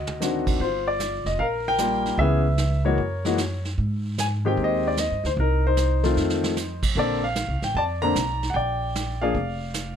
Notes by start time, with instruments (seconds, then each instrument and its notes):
Already playing: upright bass D2, grand piano F#4 D#5
0.07 mid tom
0.20 grand piano D#3 C4 D4 F#4, snare, hi-hat pedal
0.47 kick, crash
0.60 upright bass G1, grand piano F4 C5, brush sweep, kick
0.87 grand piano D5
1.00 snare, hi-hat pedal
1.25 upright bass F1, grand piano D#5, snare
1.39 upright bass A#1, grand piano A#4 F5, brush sweep, kick
1.68 grand piano A#4 G5
1.78 grand piano G3 A#3 F4 A#4, snare, hi-hat pedal
2.05 snare
2.18 upright bass C#2, grand piano E3 B3 C#4 G#4 B4 E5, brush sweep, kick
2.58 snare, hi-hat pedal
2.85 grand piano E3 G#3 A#3 F#4 A#4 C#5
2.97 upright bass F#2, brush sweep, kick
3.25 grand piano E3 G#3 A#3 F#4, snare
3.38 snare, hi-hat pedal
3.65 snare
3.78 upright bass G#2, brush sweep, kick
4.18 grand piano G#5, snare, hi-hat pedal
4.45 grand piano D#3 G#3 C4 G4 G5
4.57 upright bass D#2, brush sweep, kick
4.63 grand piano C5 D#5
4.87 grand piano D5
4.97 grand piano D#5, snare, hi-hat pedal
5.11 upright bass G2
5.24 upright bass D2, grand piano C5, snare
5.37 upright bass C2, grand piano D#4 A#4, brush sweep, kick
5.67 grand piano D#4 C5
5.77 snare, hi-hat pedal
6.03 grand piano D#3 A3 C4 F4, snare
6.16 upright bass F2, snare
6.30 snare
6.44 snare
6.57 snare, hi-hat pedal
6.83 kick, crash
6.95 upright bass A#1, grand piano D3 A#3 C4 A4 D5, brush sweep, kick
7.24 grand piano F5
7.36 snare, hi-hat pedal
7.48 upright bass C2
7.62 upright bass A1, grand piano G5, snare
7.74 upright bass F2, grand piano D5 A5, brush sweep, kick
8.02 grand piano D3 A#3 C4 D4 A#5
8.15 upright bass B1, snare, hi-hat pedal
8.43 snare
8.50 grand piano F#5
8.54 upright bass A#1, grand piano D5 G5, brush sweep, kick
8.95 snare, hi-hat pedal
9.22 grand piano F3 A#3 D4 G#4 D5 F5
9.35 upright bass F1, brush sweep, kick
9.74 snare, hi-hat pedal